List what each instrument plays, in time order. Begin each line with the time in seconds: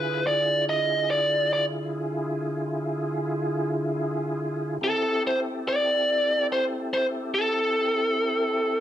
Already playing: tonewheel organ D3 E4 F4 G#4, lead electric guitar B4
0.27 lead electric guitar D5
0.69 lead electric guitar D#5
1.11 lead electric guitar D5
1.53 lead electric guitar D5
4.81 tonewheel organ C4 E4 G4 A4, lead electric guitar A4
5.27 lead electric guitar C5
5.68 lead electric guitar D5
6.52 lead electric guitar C5
6.93 lead electric guitar C5
7.34 lead electric guitar A4